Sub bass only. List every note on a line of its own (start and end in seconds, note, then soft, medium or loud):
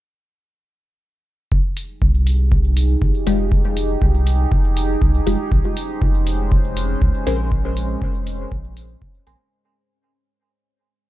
1.52 1.61 F1 loud
2.02 2.96 C2 loud
3.02 3.11 G#1 medium
3.27 3.96 F1 medium
4.02 4.46 C2 loud
4.52 4.96 F1 medium
5.02 5.20 C2 medium
5.27 5.36 F1 loud
5.52 5.61 A#1 loud
6.02 6.96 F1 loud
7.02 7.11 C#2 medium
7.27 7.96 A#1 medium
8.02 8.46 F1 loud
8.52 8.96 A#1 medium
9.02 9.20 F1 medium
9.27 9.36 A#1 loud